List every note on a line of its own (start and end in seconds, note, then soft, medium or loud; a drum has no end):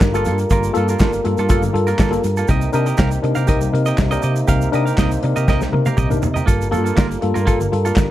0.00 0.27 G1 loud
0.00 0.15 G2 medium
0.00 0.15 D3 medium
0.00 2.46 G3 medium
0.00 2.46 F4 medium
0.00 2.46 A4 medium
0.00 2.46 A#4 medium
0.00 muted clean electric guitar stroke soft
0.00 kick loud
0.00 snare loud
0.00 clap medium
0.00 shaker medium
0.14 0.26 A#3 medium
0.14 0.25 A#3 medium
0.14 0.24 F4 medium
0.14 0.26 F4 medium
0.14 0.24 A4 medium
0.14 0.27 A4 medium
0.14 closed hi-hat soft
0.14 shaker medium
0.25 0.44 G2 loud
0.25 0.42 A#3 medium
0.25 0.31 F4 soft
0.25 0.40 F4 medium
0.25 0.31 A4 soft
0.25 0.39 A4 medium
0.25 closed hi-hat medium
0.25 shaker medium
0.38 muted clean electric guitar stroke soft
0.38 closed hi-hat soft
0.38 shaker medium
0.50 0.69 G1 loud
0.50 0.64 G2 medium
0.50 0.64 D3 medium
0.50 0.71 A#3 medium
0.50 0.71 F4 medium
0.50 0.72 A#4 medium
0.50 kick loud
0.50 closed hi-hat medium
0.50 shaker medium
0.63 closed hi-hat soft
0.63 shaker medium
0.73 0.94 G2 medium
0.73 0.88 A#3 medium
0.73 0.90 A#3 medium
0.73 0.86 F4 medium
0.73 0.89 F4 medium
0.73 0.86 A4 loud
0.73 closed hi-hat medium
0.73 shaker soft
0.78 0.89 A4 medium
0.87 0.98 A#3 soft
0.87 0.93 F4 soft
0.87 0.99 F4 medium
0.87 0.92 A4 soft
0.87 1.01 A#4 medium
0.87 closed hi-hat soft
0.87 shaker medium
0.99 1.18 G1 loud
0.99 1.13 G2 medium
0.99 1.14 D3 medium
0.99 1.20 A#3 medium
0.99 1.13 F4 medium
0.99 1.12 A4 medium
0.99 kick loud
0.99 snare loud
0.99 clap medium
0.99 shaker medium
1.13 muted clean electric guitar stroke soft
1.13 closed hi-hat soft
1.13 shaker soft
1.24 1.35 G2 loud
1.24 1.38 A#3 medium
1.24 1.36 F4 medium
1.24 1.36 A4 medium
1.24 muted clean electric guitar stroke soft
1.24 closed hi-hat medium
1.38 1.52 G2 medium
1.38 1.48 A#3 soft
1.38 1.43 F4 soft
1.38 1.49 F4 medium
1.38 1.43 A4 soft
1.38 1.50 A4 medium
1.38 closed hi-hat soft
1.38 shaker medium
1.49 1.68 G1 medium
1.49 1.70 A#3 medium
1.49 1.63 F4 medium
1.49 1.64 F4 medium
1.49 1.63 A4 medium
1.49 1.62 A4 loud
1.49 kick loud
1.49 closed hi-hat medium
1.49 shaker medium
1.62 1.75 G2 medium
1.62 1.75 D3 medium
1.62 muted clean electric guitar stroke soft
1.62 closed hi-hat soft
1.62 shaker medium
1.73 1.92 G2 loud
1.73 1.88 F4 medium
1.73 1.88 A4 medium
1.73 muted clean electric guitar stroke soft
1.73 closed hi-hat medium
1.87 1.98 A#3 soft
1.87 1.99 F4 medium
1.87 2.01 A#4 medium
1.87 closed hi-hat soft
1.87 shaker medium
1.98 2.18 G1 loud
1.98 2.12 G2 medium
1.98 2.13 D3 medium
1.98 2.20 A#3 medium
1.98 2.13 F4 medium
1.98 2.12 A4 medium
1.98 kick loud
1.98 snare loud
1.98 clap medium
1.98 shaker medium
2.10 2.24 A#3 medium
2.10 2.22 F4 medium
2.10 2.22 A4 medium
2.10 muted clean electric guitar stroke soft
2.10 closed hi-hat soft
2.10 shaker medium
2.23 2.42 G2 medium
2.23 2.29 F4 soft
2.23 2.29 A4 soft
2.23 muted clean electric guitar stroke soft
2.23 closed hi-hat medium
2.23 shaker medium
2.37 2.54 A#3 soft
2.37 2.48 F4 medium
2.37 2.49 A4 medium
2.37 closed hi-hat soft
2.37 shaker soft
2.48 2.67 C2 loud
2.48 2.63 C3 medium
2.48 6.43 C3 medium
2.48 2.63 G3 medium
2.48 6.43 A#3 medium
2.48 6.43 D#4 medium
2.48 2.69 G4 medium
2.48 2.70 A#4 medium
2.48 2.70 D#5 loud
2.48 kick loud
2.48 closed hi-hat medium
2.48 shaker medium
2.61 closed hi-hat soft
2.61 shaker medium
2.72 2.92 C3 medium
2.72 2.87 D4 medium
2.72 2.85 D#4 medium
2.72 2.87 G4 medium
2.72 2.85 A#4 loud
2.72 2.86 A#4 medium
2.72 2.85 D#5 medium
2.72 closed hi-hat medium
2.72 shaker medium
2.86 2.91 D#4 soft
2.86 2.96 G4 medium
2.86 2.91 A#4 soft
2.86 2.97 A#4 medium
2.86 2.98 D#5 medium
2.86 closed hi-hat soft
2.86 shaker medium
2.97 3.17 C2 loud
2.97 3.12 C3 medium
2.97 3.12 G3 medium
2.97 3.18 G4 medium
2.97 3.12 A#4 medium
2.97 3.11 F5 medium
2.97 kick loud
2.97 snare loud
2.97 clap medium
2.97 shaker medium
3.11 muted clean electric guitar stroke soft
3.11 closed hi-hat medium
3.11 shaker medium
3.22 3.33 C3 loud
3.22 3.37 D4 medium
3.22 3.35 D#4 medium
3.22 3.35 A#4 medium
3.22 muted clean electric guitar stroke soft
3.22 closed hi-hat medium
3.35 3.45 C3 medium
3.35 3.41 D#4 soft
3.35 3.46 G4 medium
3.35 3.47 A#4 medium
3.35 3.41 A#4 soft
3.35 3.49 F5 medium
3.35 closed hi-hat soft
3.35 shaker medium
3.47 3.67 C2 loud
3.47 3.62 D#4 medium
3.47 3.68 G4 medium
3.47 3.61 A#4 medium
3.47 3.62 A#4 medium
3.47 3.60 D#5 medium
3.47 kick loud
3.47 closed hi-hat medium
3.47 shaker medium
3.60 3.73 C3 medium
3.60 3.74 G3 medium
3.60 muted clean electric guitar stroke soft
3.60 closed hi-hat soft
3.60 shaker medium
3.73 3.92 C3 loud
3.73 3.87 D#4 medium
3.73 3.87 A#4 medium
3.73 muted clean electric guitar stroke soft
3.73 closed hi-hat medium
3.86 3.96 G4 soft
3.86 3.97 A#4 medium
3.86 3.98 D#5 medium
3.86 closed hi-hat soft
3.86 shaker medium
3.97 4.17 C2 loud
3.97 4.12 C3 medium
3.97 4.12 G3 medium
3.97 muted clean electric guitar stroke soft
3.97 kick loud
3.97 snare loud
3.97 clap medium
3.97 shaker medium
4.11 4.24 D4 medium
4.11 4.22 D#4 medium
4.11 4.21 G4 medium
4.11 4.21 A#4 medium
4.11 4.22 A#4 medium
4.11 4.23 D#5 medium
4.11 closed hi-hat soft
4.11 shaker medium
4.22 4.42 C3 loud
4.22 4.28 D#4 soft
4.22 4.39 G4 medium
4.22 4.28 A#4 soft
4.22 4.36 A#4 medium
4.22 4.35 D#5 medium
4.22 closed hi-hat medium
4.22 shaker medium
4.36 muted clean electric guitar stroke soft
4.36 closed hi-hat soft
4.36 shaker medium
4.48 4.67 C2 loud
4.48 4.62 C3 medium
4.48 4.62 G3 medium
4.48 4.68 G4 medium
4.48 4.68 A#4 medium
4.48 4.69 F5 loud
4.48 kick loud
4.48 closed hi-hat medium
4.48 shaker medium
4.61 closed hi-hat soft
4.61 shaker medium
4.72 4.91 C3 medium
4.72 4.86 D4 medium
4.72 4.85 D#4 medium
4.72 4.87 G4 medium
4.72 4.85 A#4 loud
4.72 4.85 A#4 medium
4.72 4.85 D#5 medium
4.72 closed hi-hat medium
4.72 shaker medium
4.86 4.91 D#4 soft
4.86 4.96 G4 soft
4.86 4.91 A#4 soft
4.86 4.98 A#4 medium
4.86 4.99 F5 medium
4.86 closed hi-hat soft
4.86 shaker medium
4.98 5.16 C2 loud
4.98 5.12 C3 medium
4.98 5.12 G3 medium
4.98 5.18 G4 medium
4.98 5.12 A#4 medium
4.98 5.11 D#5 medium
4.98 kick medium
4.98 snare loud
4.98 clap medium
4.98 shaker medium
5.11 muted clean electric guitar stroke medium
5.11 closed hi-hat soft
5.11 shaker medium
5.23 5.33 C3 loud
5.23 5.37 D4 medium
5.23 5.35 D#4 medium
5.23 5.35 A#4 medium
5.23 muted clean electric guitar stroke soft
5.23 closed hi-hat medium
5.36 5.45 C3 medium
5.36 5.41 D#4 soft
5.36 5.47 G4 medium
5.36 5.41 A#4 soft
5.36 5.48 A#4 medium
5.36 5.49 D#5 medium
5.36 closed hi-hat soft
5.36 shaker medium
5.48 5.66 C2 loud
5.48 5.61 D#4 medium
5.48 5.68 G4 medium
5.48 5.62 A#4 medium
5.48 5.62 A#4 loud
5.48 5.61 D#5 loud
5.48 kick loud
5.48 snare medium
5.48 shaker medium
5.61 5.73 C3 medium
5.61 5.73 G3 medium
5.61 muted clean electric guitar stroke soft
5.61 snare medium
5.61 shaker soft
5.73 5.91 C3 loud
5.73 5.86 D#4 medium
5.73 5.86 A#4 medium
5.73 muted clean electric guitar stroke soft
5.73 high tom medium
5.86 5.96 G4 soft
5.86 5.97 A#4 medium
5.86 5.98 F5 medium
5.86 high tom medium
5.86 shaker medium
5.97 6.25 C2 loud
5.97 6.11 C3 medium
5.97 6.11 G3 medium
5.97 6.17 G4 medium
5.97 6.11 A#4 medium
5.97 6.09 D#5 loud
5.97 kick loud
5.97 mid tom medium
5.97 shaker medium
6.10 6.23 D4 medium
6.10 6.21 D#4 medium
6.10 6.21 A#4 medium
6.10 muted clean electric guitar stroke medium
6.10 mid tom medium
6.10 shaker medium
6.22 6.41 C3 medium
6.22 6.27 D#4 soft
6.22 6.28 A#4 soft
6.22 muted clean electric guitar stroke soft
6.22 floor tom medium
6.22 shaker medium
6.34 6.46 G4 soft
6.34 6.47 A#4 soft
6.34 6.50 D#5 soft
6.34 floor tom medium
6.34 shaker medium
6.46 6.74 G1 loud
6.46 6.61 G2 medium
6.46 6.61 D3 medium
6.46 8.11 G3 medium
6.46 6.67 A#3 medium
6.46 6.67 F4 medium
6.46 8.11 F4 medium
6.46 6.68 A4 medium
6.46 8.11 A4 medium
6.46 8.11 A#4 medium
6.46 kick loud
6.46 closed hi-hat medium
6.46 shaker medium
6.61 closed hi-hat soft
6.61 shaker medium
6.71 6.91 G2 medium
6.71 6.85 A#3 medium
6.71 6.83 F4 medium
6.71 6.84 F4 medium
6.71 6.84 A4 medium
6.71 6.83 A4 medium
6.71 closed hi-hat medium
6.71 shaker medium
6.84 6.94 A#3 soft
6.84 6.90 F4 soft
6.84 6.95 F4 medium
6.84 6.97 A4 medium
6.84 6.90 A4 soft
6.84 closed hi-hat soft
6.84 shaker medium
6.96 7.16 G1 loud
6.96 7.10 G2 medium
6.96 7.10 D3 medium
6.96 7.17 A#3 medium
6.96 7.09 F4 medium
6.96 7.08 A#4 medium
6.96 kick medium
6.96 snare loud
6.96 clap medium
6.96 shaker medium
7.09 muted clean electric guitar stroke soft
7.09 closed hi-hat soft
7.09 shaker soft
7.21 7.32 G2 medium
7.21 7.36 A#3 medium
7.21 7.35 F4 medium
7.21 7.35 A4 medium
7.21 muted clean electric guitar stroke soft
7.21 closed hi-hat medium
7.34 7.44 G2 loud
7.34 7.44 A#3 soft
7.34 7.46 F4 medium
7.34 7.40 F4 soft
7.34 7.40 A4 soft
7.34 7.47 A#4 medium
7.34 closed hi-hat soft
7.34 shaker medium
7.46 7.65 G1 medium
7.46 7.66 A#3 medium
7.46 7.61 F4 medium
7.46 7.59 A4 loud
7.46 7.61 A4 medium
7.46 kick loud
7.46 closed hi-hat medium
7.46 shaker medium
7.60 7.73 G2 medium
7.60 7.73 D3 medium
7.60 muted clean electric guitar stroke soft
7.60 closed hi-hat soft
7.60 shaker medium
7.72 7.90 G2 medium
7.72 7.86 F4 medium
7.72 7.86 A4 medium
7.72 muted clean electric guitar stroke soft
7.72 closed hi-hat medium
7.85 7.95 A#3 soft
7.85 7.96 F4 medium
7.85 7.96 A4 medium
7.85 closed hi-hat soft
7.85 shaker soft
7.96 8.11 G1 loud
7.96 8.11 G2 medium
7.96 8.11 D3 medium
7.96 muted clean electric guitar stroke soft
7.96 kick loud
7.96 snare loud
7.96 clap medium
7.96 shaker medium